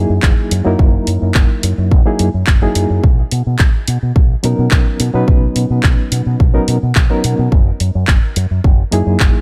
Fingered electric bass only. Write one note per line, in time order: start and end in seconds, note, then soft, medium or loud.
0.10 0.18 F#2 medium
0.23 0.32 F#1 medium
0.51 0.60 F#2 medium
0.66 0.74 F#2 loud
0.79 0.97 F#1 medium
1.07 1.16 F#2 medium
1.22 1.30 F#2 medium
1.35 1.44 F#1 medium
1.64 1.72 F#2 medium
1.78 1.93 F#2 medium
1.91 2.00 F#1 medium
2.20 2.28 F#2 medium
2.34 2.42 F#2 medium
2.48 2.65 F#1 medium
2.76 2.84 F#2 medium
2.90 2.98 F#2 medium
3.04 3.21 B1 medium
3.32 3.41 B2 medium
3.47 3.55 B2 medium
3.60 3.69 B1 medium
3.88 3.97 B2 medium
4.03 4.11 B2 medium
4.16 4.33 B1 medium
4.44 4.53 B2 medium
4.59 4.67 B2 medium
4.72 4.81 B1 medium
5.00 5.09 B2 medium
5.14 5.23 B2 loud
5.28 5.46 B1 medium
5.56 5.65 B2 medium
5.70 5.79 B2 medium
5.84 5.93 B1 medium
6.12 6.21 B2 medium
6.26 6.35 B2 medium
6.40 6.58 B1 medium
6.68 6.77 B2 medium
6.83 6.91 B2 medium
6.96 7.05 B1 medium
7.24 7.33 B2 medium
7.39 7.47 B2 loud
7.52 7.70 F#1 medium
7.80 7.89 F#2 medium
7.95 8.03 F#2 medium
8.08 8.17 F#1 medium
8.37 8.45 F#2 medium
8.51 8.59 F#2 medium
8.64 8.82 F#1 medium
8.93 9.01 F#2 medium
9.07 9.15 F#2 medium
9.20 9.29 F#1 medium